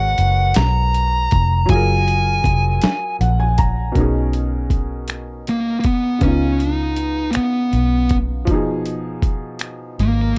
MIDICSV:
0, 0, Header, 1, 6, 480
1, 0, Start_track
1, 0, Tempo, 754717
1, 1070, Time_signature, 6, 3, 24, 8
1, 6604, End_track
2, 0, Start_track
2, 0, Title_t, "Grand piano"
2, 0, Program_c, 0, 0
2, 0, Control_c, 0, 64, 127
2, 0, Note_on_c, 0, 56, 57
2, 0, Note_on_c, 0, 66, 58
2, 0, Note_on_c, 0, 70, 51
2, 0, Note_on_c, 0, 71, 55
2, 0, Note_on_c, 0, 73, 75
2, 1037, Note_off_c, 0, 56, 0
2, 1046, Note_off_c, 0, 66, 0
2, 1050, Note_off_c, 0, 70, 0
2, 1054, Note_on_c, 0, 54, 67
2, 1058, Note_off_c, 0, 71, 0
2, 1064, Note_off_c, 0, 73, 0
2, 1075, Note_on_c, 0, 65, 58
2, 1077, Control_c, 0, 64, 0
2, 1094, Note_on_c, 0, 68, 58
2, 1114, Note_on_c, 0, 70, 65
2, 1192, Control_c, 0, 64, 127
2, 2040, Note_on_c, 0, 78, 70
2, 2147, Note_off_c, 0, 78, 0
2, 2161, Note_on_c, 0, 80, 72
2, 2267, Note_off_c, 0, 80, 0
2, 2279, Note_on_c, 0, 82, 71
2, 2477, Note_off_c, 0, 54, 0
2, 2487, Note_off_c, 0, 65, 0
2, 2494, Note_on_c, 0, 47, 58
2, 2496, Note_off_c, 0, 68, 0
2, 2498, Note_off_c, 0, 82, 0
2, 2500, Note_off_c, 0, 70, 0
2, 2510, Note_on_c, 0, 70, 52
2, 2519, Control_c, 0, 64, 0
2, 2521, Note_on_c, 0, 61, 48
2, 2535, Note_on_c, 0, 63, 50
2, 2548, Note_on_c, 0, 68, 58
2, 2618, Control_c, 0, 64, 127
2, 3916, Note_off_c, 0, 47, 0
2, 3924, Note_off_c, 0, 70, 0
2, 3930, Note_off_c, 0, 61, 0
2, 3935, Note_on_c, 0, 49, 50
2, 3937, Note_off_c, 0, 63, 0
2, 3943, Note_off_c, 0, 68, 0
2, 3954, Note_on_c, 0, 59, 46
2, 3959, Control_c, 0, 64, 0
2, 3970, Note_on_c, 0, 63, 45
2, 3988, Note_on_c, 0, 65, 59
2, 4061, Control_c, 0, 64, 127
2, 5357, Note_off_c, 0, 49, 0
2, 5366, Note_off_c, 0, 59, 0
2, 5375, Note_off_c, 0, 63, 0
2, 5375, Note_on_c, 0, 53, 67
2, 5383, Note_off_c, 0, 65, 0
2, 5390, Note_on_c, 0, 47, 56
2, 5397, Control_c, 0, 64, 0
2, 5409, Note_on_c, 0, 63, 55
2, 5428, Note_on_c, 0, 68, 70
2, 5512, Control_c, 0, 64, 127
2, 6604, Note_off_c, 0, 47, 0
2, 6604, Note_off_c, 0, 53, 0
2, 6604, Note_off_c, 0, 63, 0
2, 6604, Note_off_c, 0, 68, 0
2, 6604, End_track
3, 0, Start_track
3, 0, Title_t, "Lead electric guitar"
3, 0, Program_c, 1, 29
3, 0, Note_on_c, 1, 78, 83
3, 358, Note_on_c, 1, 82, 93
3, 370, Note_off_c, 1, 78, 0
3, 1081, Note_on_c, 1, 80, 80
3, 1096, Note_off_c, 1, 82, 0
3, 2010, Note_off_c, 1, 80, 0
3, 3492, Note_on_c, 1, 58, 70
3, 3663, Note_off_c, 1, 58, 0
3, 3688, Note_on_c, 1, 58, 48
3, 3721, Note_off_c, 1, 58, 0
3, 3726, Note_on_c, 1, 59, 64
3, 3942, Note_off_c, 1, 59, 0
3, 3962, Note_on_c, 1, 61, 70
3, 4194, Note_on_c, 1, 63, 75
3, 4203, Note_off_c, 1, 61, 0
3, 4641, Note_off_c, 1, 63, 0
3, 4647, Note_on_c, 1, 58, 44
3, 4674, Note_off_c, 1, 58, 0
3, 4677, Note_on_c, 1, 59, 64
3, 5188, Note_off_c, 1, 59, 0
3, 6364, Note_on_c, 1, 58, 71
3, 6600, Note_off_c, 1, 58, 0
3, 6604, End_track
4, 0, Start_track
4, 0, Title_t, "Fingered electric bass"
4, 0, Program_c, 2, 33
4, 0, Note_on_c, 2, 32, 101
4, 88, Note_off_c, 2, 32, 0
4, 117, Note_on_c, 2, 30, 83
4, 330, Note_off_c, 2, 30, 0
4, 358, Note_on_c, 2, 35, 101
4, 809, Note_off_c, 2, 35, 0
4, 846, Note_on_c, 2, 29, 96
4, 1055, Note_off_c, 2, 29, 0
4, 1081, Note_on_c, 2, 30, 92
4, 1530, Note_off_c, 2, 30, 0
4, 1556, Note_on_c, 2, 29, 80
4, 1769, Note_off_c, 2, 29, 0
4, 2039, Note_on_c, 2, 34, 89
4, 2489, Note_off_c, 2, 34, 0
4, 2520, Note_on_c, 2, 35, 74
4, 3480, Note_off_c, 2, 35, 0
4, 3480, Note_on_c, 2, 32, 67
4, 3723, Note_off_c, 2, 32, 0
4, 3723, Note_on_c, 2, 36, 71
4, 3933, Note_off_c, 2, 36, 0
4, 3955, Note_on_c, 2, 37, 76
4, 4647, Note_off_c, 2, 37, 0
4, 4917, Note_on_c, 2, 35, 70
4, 5396, Note_off_c, 2, 35, 0
4, 5396, Note_on_c, 2, 29, 86
4, 6327, Note_off_c, 2, 29, 0
4, 6358, Note_on_c, 2, 32, 72
4, 6570, Note_off_c, 2, 32, 0
4, 6604, End_track
5, 0, Start_track
5, 0, Title_t, "Muted fingered electric bass strokes"
5, 4684, Note_on_c, 9, 29, 39
5, 4747, Note_off_c, 9, 29, 0
5, 6604, End_track
6, 0, Start_track
6, 0, Title_t, "Drums"
6, 113, Note_on_c, 9, 42, 51
6, 177, Note_off_c, 9, 42, 0
6, 345, Note_on_c, 9, 42, 74
6, 359, Note_on_c, 9, 38, 112
6, 409, Note_off_c, 9, 42, 0
6, 422, Note_off_c, 9, 38, 0
6, 600, Note_on_c, 9, 42, 43
6, 664, Note_off_c, 9, 42, 0
6, 834, Note_on_c, 9, 42, 45
6, 841, Note_on_c, 9, 36, 83
6, 897, Note_off_c, 9, 42, 0
6, 905, Note_off_c, 9, 36, 0
6, 1073, Note_on_c, 9, 42, 64
6, 1076, Note_on_c, 9, 36, 113
6, 1137, Note_off_c, 9, 42, 0
6, 1140, Note_off_c, 9, 36, 0
6, 1321, Note_on_c, 9, 42, 53
6, 1385, Note_off_c, 9, 42, 0
6, 1553, Note_on_c, 9, 36, 95
6, 1561, Note_on_c, 9, 42, 51
6, 1616, Note_off_c, 9, 36, 0
6, 1624, Note_off_c, 9, 42, 0
6, 1790, Note_on_c, 9, 42, 71
6, 1804, Note_on_c, 9, 38, 119
6, 1854, Note_off_c, 9, 42, 0
6, 1867, Note_off_c, 9, 38, 0
6, 2041, Note_on_c, 9, 42, 52
6, 2105, Note_off_c, 9, 42, 0
6, 2276, Note_on_c, 9, 42, 49
6, 2282, Note_on_c, 9, 36, 81
6, 2340, Note_off_c, 9, 42, 0
6, 2345, Note_off_c, 9, 36, 0
6, 2515, Note_on_c, 9, 36, 78
6, 2516, Note_on_c, 9, 42, 45
6, 2579, Note_off_c, 9, 36, 0
6, 2579, Note_off_c, 9, 42, 0
6, 2756, Note_on_c, 9, 42, 42
6, 2820, Note_off_c, 9, 42, 0
6, 2990, Note_on_c, 9, 36, 69
6, 2994, Note_on_c, 9, 42, 39
6, 3054, Note_off_c, 9, 36, 0
6, 3058, Note_off_c, 9, 42, 0
6, 3229, Note_on_c, 9, 42, 61
6, 3242, Note_on_c, 9, 26, 96
6, 3292, Note_off_c, 9, 42, 0
6, 3306, Note_off_c, 9, 26, 0
6, 3481, Note_on_c, 9, 42, 38
6, 3544, Note_off_c, 9, 42, 0
6, 3712, Note_on_c, 9, 42, 38
6, 3718, Note_on_c, 9, 36, 72
6, 3775, Note_off_c, 9, 42, 0
6, 3782, Note_off_c, 9, 36, 0
6, 3949, Note_on_c, 9, 42, 49
6, 3951, Note_on_c, 9, 36, 96
6, 4013, Note_off_c, 9, 42, 0
6, 4015, Note_off_c, 9, 36, 0
6, 4198, Note_on_c, 9, 42, 42
6, 4261, Note_off_c, 9, 42, 0
6, 4429, Note_on_c, 9, 42, 42
6, 4493, Note_off_c, 9, 42, 0
6, 4662, Note_on_c, 9, 42, 58
6, 4675, Note_on_c, 9, 26, 96
6, 4725, Note_off_c, 9, 42, 0
6, 4739, Note_off_c, 9, 26, 0
6, 4915, Note_on_c, 9, 42, 37
6, 4979, Note_off_c, 9, 42, 0
6, 5147, Note_on_c, 9, 42, 41
6, 5156, Note_on_c, 9, 36, 75
6, 5211, Note_off_c, 9, 42, 0
6, 5220, Note_off_c, 9, 36, 0
6, 5387, Note_on_c, 9, 42, 50
6, 5390, Note_on_c, 9, 36, 90
6, 5451, Note_off_c, 9, 42, 0
6, 5453, Note_off_c, 9, 36, 0
6, 5632, Note_on_c, 9, 42, 46
6, 5696, Note_off_c, 9, 42, 0
6, 5867, Note_on_c, 9, 36, 81
6, 5871, Note_on_c, 9, 42, 40
6, 5930, Note_off_c, 9, 36, 0
6, 5934, Note_off_c, 9, 42, 0
6, 6101, Note_on_c, 9, 42, 64
6, 6114, Note_on_c, 9, 26, 93
6, 6164, Note_off_c, 9, 42, 0
6, 6178, Note_off_c, 9, 26, 0
6, 6356, Note_on_c, 9, 42, 37
6, 6420, Note_off_c, 9, 42, 0
6, 6604, End_track
0, 0, End_of_file